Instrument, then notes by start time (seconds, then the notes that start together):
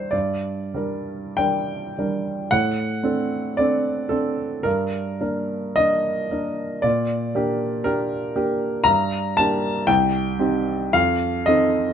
upright piano
Already playing: G3 D4 A#4 C5
0.11 G2 D5
0.74 G3 D4 A#4
1.37 G3 D4 A#4 G5
1.99 G3 D4 A#4
2.51 A2 F#5
3.03 C4 D4 A4
3.57 C4 D4 A4 D5
4.09 C4 D4 A4
4.63 G2 A#4
5.21 A#3 D4 A#4
5.76 A#3 D4 A#4 D#5
6.31 A#3 D4 A#4
6.82 A#2 D5
7.35 A#3 D4 G4
7.84 A#3 D4 G4 A#4
8.35 A#3 D4 G4
8.84 G2 A#5
9.37 A#3 D4 G4 A5
9.87 C2 G5
10.39 C4 D#4 G4
10.93 F2 F5
11.46 C4 D#4 A4 D#5